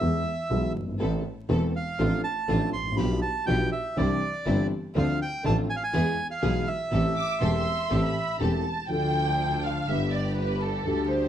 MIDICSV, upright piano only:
0, 0, Header, 1, 2, 480
1, 0, Start_track
1, 0, Key_signature, 0, "minor"
1, 0, Tempo, 494234
1, 972, Time_signature, 4, 2, 24, 8
1, 10959, End_track
2, 0, Start_track
2, 0, Title_t, "Upright piano"
2, 0, Program_c, 0, 0
2, 9, Note_on_c, 0, 52, 66
2, 9, Note_on_c, 0, 56, 51
2, 13, Note_on_c, 0, 40, 65
2, 15, Note_on_c, 0, 59, 46
2, 17, Note_on_c, 0, 68, 60
2, 210, Note_off_c, 0, 56, 0
2, 212, Note_off_c, 0, 40, 0
2, 212, Note_off_c, 0, 52, 0
2, 213, Note_off_c, 0, 59, 0
2, 214, Note_off_c, 0, 68, 0
2, 492, Note_on_c, 0, 52, 53
2, 494, Note_on_c, 0, 35, 64
2, 495, Note_on_c, 0, 47, 61
2, 496, Note_on_c, 0, 56, 50
2, 496, Note_on_c, 0, 68, 58
2, 498, Note_on_c, 0, 59, 50
2, 694, Note_off_c, 0, 52, 0
2, 695, Note_off_c, 0, 35, 0
2, 695, Note_off_c, 0, 47, 0
2, 695, Note_off_c, 0, 68, 0
2, 696, Note_off_c, 0, 56, 0
2, 696, Note_off_c, 0, 59, 0
2, 794, Note_on_c, 0, 30, 35
2, 848, Note_on_c, 0, 31, 46
2, 853, Note_off_c, 0, 30, 0
2, 910, Note_off_c, 0, 31, 0
2, 910, Note_on_c, 0, 32, 47
2, 966, Note_on_c, 0, 52, 46
2, 970, Note_on_c, 0, 45, 64
2, 970, Note_on_c, 0, 59, 44
2, 971, Note_off_c, 0, 32, 0
2, 971, Note_on_c, 0, 33, 57
2, 971, Note_on_c, 0, 60, 43
2, 976, Note_on_c, 0, 69, 53
2, 1171, Note_off_c, 0, 52, 0
2, 1174, Note_off_c, 0, 33, 0
2, 1174, Note_off_c, 0, 45, 0
2, 1174, Note_off_c, 0, 59, 0
2, 1174, Note_off_c, 0, 60, 0
2, 1177, Note_off_c, 0, 69, 0
2, 1444, Note_on_c, 0, 52, 60
2, 1449, Note_on_c, 0, 40, 73
2, 1451, Note_on_c, 0, 28, 61
2, 1451, Note_on_c, 0, 60, 53
2, 1451, Note_on_c, 0, 69, 65
2, 1452, Note_on_c, 0, 59, 50
2, 1651, Note_off_c, 0, 52, 0
2, 1653, Note_off_c, 0, 40, 0
2, 1654, Note_off_c, 0, 60, 0
2, 1655, Note_off_c, 0, 28, 0
2, 1655, Note_off_c, 0, 59, 0
2, 1655, Note_off_c, 0, 69, 0
2, 1931, Note_on_c, 0, 60, 53
2, 1932, Note_on_c, 0, 53, 58
2, 1933, Note_on_c, 0, 33, 64
2, 1934, Note_on_c, 0, 45, 62
2, 1934, Note_on_c, 0, 62, 53
2, 1938, Note_on_c, 0, 69, 62
2, 2135, Note_off_c, 0, 53, 0
2, 2135, Note_off_c, 0, 60, 0
2, 2136, Note_off_c, 0, 33, 0
2, 2136, Note_off_c, 0, 45, 0
2, 2136, Note_off_c, 0, 62, 0
2, 2138, Note_off_c, 0, 69, 0
2, 2408, Note_on_c, 0, 60, 52
2, 2409, Note_on_c, 0, 53, 56
2, 2411, Note_on_c, 0, 62, 54
2, 2411, Note_on_c, 0, 69, 66
2, 2412, Note_on_c, 0, 33, 72
2, 2413, Note_on_c, 0, 45, 72
2, 2613, Note_off_c, 0, 53, 0
2, 2613, Note_off_c, 0, 60, 0
2, 2614, Note_off_c, 0, 62, 0
2, 2614, Note_off_c, 0, 69, 0
2, 2615, Note_off_c, 0, 33, 0
2, 2616, Note_off_c, 0, 45, 0
2, 2720, Note_on_c, 0, 32, 35
2, 2774, Note_on_c, 0, 33, 45
2, 2778, Note_off_c, 0, 32, 0
2, 2831, Note_on_c, 0, 34, 55
2, 2835, Note_off_c, 0, 33, 0
2, 2879, Note_on_c, 0, 53, 52
2, 2881, Note_on_c, 0, 59, 46
2, 2882, Note_on_c, 0, 62, 48
2, 2885, Note_on_c, 0, 35, 62
2, 2885, Note_on_c, 0, 67, 62
2, 2886, Note_on_c, 0, 47, 58
2, 2893, Note_off_c, 0, 34, 0
2, 3088, Note_off_c, 0, 53, 0
2, 3089, Note_off_c, 0, 59, 0
2, 3090, Note_off_c, 0, 62, 0
2, 3091, Note_off_c, 0, 67, 0
2, 3092, Note_off_c, 0, 35, 0
2, 3092, Note_off_c, 0, 47, 0
2, 3370, Note_on_c, 0, 47, 71
2, 3370, Note_on_c, 0, 62, 60
2, 3372, Note_on_c, 0, 35, 69
2, 3372, Note_on_c, 0, 53, 66
2, 3374, Note_on_c, 0, 59, 55
2, 3376, Note_on_c, 0, 67, 68
2, 3574, Note_off_c, 0, 47, 0
2, 3574, Note_off_c, 0, 62, 0
2, 3575, Note_off_c, 0, 35, 0
2, 3575, Note_off_c, 0, 53, 0
2, 3576, Note_off_c, 0, 59, 0
2, 3577, Note_off_c, 0, 67, 0
2, 3849, Note_on_c, 0, 60, 54
2, 3852, Note_on_c, 0, 52, 63
2, 3853, Note_on_c, 0, 36, 68
2, 3854, Note_on_c, 0, 48, 68
2, 3854, Note_on_c, 0, 62, 55
2, 3855, Note_on_c, 0, 67, 63
2, 4053, Note_off_c, 0, 60, 0
2, 4054, Note_off_c, 0, 52, 0
2, 4055, Note_off_c, 0, 36, 0
2, 4055, Note_off_c, 0, 48, 0
2, 4055, Note_off_c, 0, 62, 0
2, 4056, Note_off_c, 0, 67, 0
2, 4335, Note_on_c, 0, 52, 59
2, 4336, Note_on_c, 0, 60, 53
2, 4336, Note_on_c, 0, 62, 55
2, 4337, Note_on_c, 0, 43, 66
2, 4338, Note_on_c, 0, 31, 73
2, 4340, Note_on_c, 0, 67, 60
2, 4535, Note_off_c, 0, 52, 0
2, 4535, Note_off_c, 0, 60, 0
2, 4535, Note_off_c, 0, 62, 0
2, 4536, Note_off_c, 0, 31, 0
2, 4536, Note_off_c, 0, 43, 0
2, 4537, Note_off_c, 0, 67, 0
2, 4809, Note_on_c, 0, 53, 56
2, 4811, Note_on_c, 0, 60, 56
2, 4811, Note_on_c, 0, 62, 54
2, 4812, Note_on_c, 0, 50, 71
2, 4814, Note_on_c, 0, 38, 60
2, 4814, Note_on_c, 0, 69, 56
2, 5009, Note_off_c, 0, 53, 0
2, 5010, Note_off_c, 0, 60, 0
2, 5010, Note_off_c, 0, 62, 0
2, 5011, Note_off_c, 0, 50, 0
2, 5012, Note_off_c, 0, 38, 0
2, 5012, Note_off_c, 0, 69, 0
2, 5293, Note_on_c, 0, 33, 73
2, 5294, Note_on_c, 0, 45, 75
2, 5294, Note_on_c, 0, 53, 61
2, 5294, Note_on_c, 0, 69, 73
2, 5295, Note_on_c, 0, 62, 55
2, 5296, Note_on_c, 0, 60, 58
2, 5490, Note_off_c, 0, 33, 0
2, 5490, Note_off_c, 0, 45, 0
2, 5490, Note_off_c, 0, 53, 0
2, 5490, Note_off_c, 0, 62, 0
2, 5490, Note_off_c, 0, 69, 0
2, 5491, Note_off_c, 0, 60, 0
2, 5763, Note_on_c, 0, 52, 69
2, 5767, Note_on_c, 0, 59, 56
2, 5768, Note_on_c, 0, 56, 53
2, 5768, Note_on_c, 0, 68, 67
2, 5769, Note_on_c, 0, 40, 71
2, 5964, Note_off_c, 0, 52, 0
2, 5965, Note_off_c, 0, 40, 0
2, 5965, Note_off_c, 0, 56, 0
2, 5965, Note_off_c, 0, 59, 0
2, 5965, Note_off_c, 0, 68, 0
2, 6239, Note_on_c, 0, 47, 68
2, 6239, Note_on_c, 0, 52, 55
2, 6241, Note_on_c, 0, 35, 68
2, 6241, Note_on_c, 0, 56, 58
2, 6241, Note_on_c, 0, 68, 72
2, 6242, Note_on_c, 0, 59, 56
2, 6440, Note_off_c, 0, 47, 0
2, 6440, Note_off_c, 0, 52, 0
2, 6441, Note_off_c, 0, 35, 0
2, 6441, Note_off_c, 0, 56, 0
2, 6441, Note_off_c, 0, 68, 0
2, 6442, Note_off_c, 0, 59, 0
2, 6717, Note_on_c, 0, 52, 51
2, 6719, Note_on_c, 0, 45, 59
2, 6719, Note_on_c, 0, 57, 49
2, 6721, Note_on_c, 0, 33, 60
2, 6721, Note_on_c, 0, 60, 50
2, 6724, Note_on_c, 0, 67, 58
2, 6918, Note_off_c, 0, 52, 0
2, 6920, Note_off_c, 0, 33, 0
2, 6920, Note_off_c, 0, 45, 0
2, 6920, Note_off_c, 0, 57, 0
2, 6920, Note_off_c, 0, 60, 0
2, 6922, Note_off_c, 0, 67, 0
2, 7200, Note_on_c, 0, 52, 65
2, 7202, Note_on_c, 0, 40, 67
2, 7205, Note_on_c, 0, 57, 51
2, 7206, Note_on_c, 0, 60, 57
2, 7206, Note_on_c, 0, 67, 66
2, 7207, Note_on_c, 0, 28, 70
2, 7400, Note_off_c, 0, 52, 0
2, 7401, Note_off_c, 0, 40, 0
2, 7402, Note_off_c, 0, 57, 0
2, 7402, Note_off_c, 0, 60, 0
2, 7403, Note_off_c, 0, 28, 0
2, 7403, Note_off_c, 0, 67, 0
2, 7677, Note_on_c, 0, 57, 49
2, 7678, Note_on_c, 0, 52, 54
2, 7679, Note_on_c, 0, 45, 62
2, 7679, Note_on_c, 0, 60, 52
2, 7680, Note_on_c, 0, 33, 62
2, 7681, Note_on_c, 0, 67, 63
2, 7881, Note_off_c, 0, 52, 0
2, 7881, Note_off_c, 0, 57, 0
2, 7882, Note_off_c, 0, 45, 0
2, 7882, Note_off_c, 0, 60, 0
2, 7883, Note_off_c, 0, 33, 0
2, 7883, Note_off_c, 0, 67, 0
2, 8160, Note_on_c, 0, 52, 60
2, 8163, Note_on_c, 0, 28, 67
2, 8163, Note_on_c, 0, 57, 50
2, 8164, Note_on_c, 0, 60, 46
2, 8167, Note_on_c, 0, 40, 58
2, 8169, Note_on_c, 0, 67, 59
2, 8365, Note_off_c, 0, 52, 0
2, 8366, Note_off_c, 0, 28, 0
2, 8367, Note_off_c, 0, 57, 0
2, 8367, Note_off_c, 0, 60, 0
2, 8368, Note_off_c, 0, 40, 0
2, 8370, Note_off_c, 0, 67, 0
2, 8625, Note_on_c, 0, 53, 43
2, 8639, Note_on_c, 0, 57, 38
2, 8644, Note_on_c, 0, 50, 52
2, 8645, Note_on_c, 0, 38, 48
2, 8653, Note_on_c, 0, 62, 36
2, 8665, Note_on_c, 0, 69, 44
2, 9549, Note_off_c, 0, 53, 0
2, 9556, Note_off_c, 0, 57, 0
2, 9559, Note_off_c, 0, 38, 0
2, 9559, Note_off_c, 0, 50, 0
2, 9563, Note_off_c, 0, 62, 0
2, 9569, Note_off_c, 0, 69, 0
2, 9591, Note_on_c, 0, 50, 50
2, 9605, Note_on_c, 0, 55, 43
2, 9612, Note_on_c, 0, 43, 54
2, 9613, Note_on_c, 0, 31, 60
2, 9619, Note_on_c, 0, 59, 47
2, 9629, Note_on_c, 0, 67, 50
2, 10510, Note_off_c, 0, 50, 0
2, 10517, Note_off_c, 0, 55, 0
2, 10520, Note_off_c, 0, 43, 0
2, 10521, Note_off_c, 0, 31, 0
2, 10524, Note_off_c, 0, 59, 0
2, 10529, Note_off_c, 0, 67, 0
2, 10544, Note_on_c, 0, 50, 46
2, 10557, Note_on_c, 0, 55, 39
2, 10558, Note_off_c, 0, 50, 0
2, 10564, Note_on_c, 0, 38, 49
2, 10564, Note_on_c, 0, 50, 50
2, 10567, Note_on_c, 0, 57, 42
2, 10582, Note_on_c, 0, 67, 44
2, 10959, Note_off_c, 0, 38, 0
2, 10959, Note_off_c, 0, 50, 0
2, 10959, Note_off_c, 0, 55, 0
2, 10959, Note_off_c, 0, 57, 0
2, 10959, Note_off_c, 0, 67, 0
2, 10959, End_track
0, 0, End_of_file